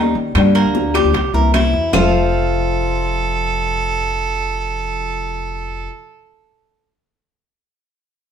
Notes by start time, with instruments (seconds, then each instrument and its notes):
Already playing: upright bass D#2, nylon-string guitar D#3 G3 C#4, cuban tres D#4
0.00 nylon-string guitar G4
0.15 upright bass D#3
0.35 upright bass G2, nylon-string guitar D3 F3 A#3 D4 G4, high bongo, high timbale, claves
0.55 cuban tres A#3, high bongo, high conga, high timbale
0.64 upright bass D2
0.75 high bongo, high conga
0.94 nylon-string guitar F3 A#3 D4 G4, cuban tres G4, high bongo, high conga, high timbale, claves
1.04 upright bass D2
1.13 upright bass C2, muted nylon-string guitar stroke, high bongo, high conga, high timbale
1.33 upright bass C2, nylon-string guitar E3 A#3 C4 E4, cuban tres A#4, high conga
1.53 nylon-string guitar E3 A#3 C4, cuban tres E4, high bongo, low bongo, high conga, high timbale, claves
1.73 upright bass E2, high bongo, high conga
1.93 upright bass F1, nylon-string guitar F2 C3 F3 A3 C4 F4, cuban tres F4 C5 F5, violin A4, low bongo, low conga, low timbale, claves